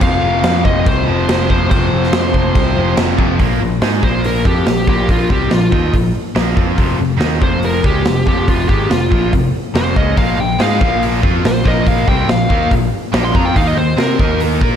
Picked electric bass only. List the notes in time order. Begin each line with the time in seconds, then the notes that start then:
0.02 F1
0.21 F1
0.43 F2
0.65 F1
0.87 C2
1.07 F1
1.28 F1
1.71 F1
1.92 F1
2.12 F2
2.34 F1
2.56 C2
2.76 F1
2.97 F1
3.40 A#1
3.61 A#1
3.81 G#2
4.03 A#1
4.45 F2
4.65 A#1
4.88 A#1
5.30 C2
5.51 A#1
5.72 D#2
5.94 A#1
6.35 A#1
6.57 F2
6.78 F1
6.99 F1
7.20 D#2
7.42 F1
7.84 C#2
8.06 F1
8.27 F1
8.70 G#1
8.90 F1
9.12 A#1
9.33 F1
9.75 F1
9.96 C#2
10.18 A#1
10.38 A#1
10.60 G#2
10.82 A#1
11.23 F2
11.44 A#1
11.66 A#1
12.07 C2
12.27 A#1
12.50 D#2
12.71 A#1
13.13 A#1
13.35 F2
13.56 D#2
13.76 D#2
13.98 C3
14.19 D#2
14.62 A#2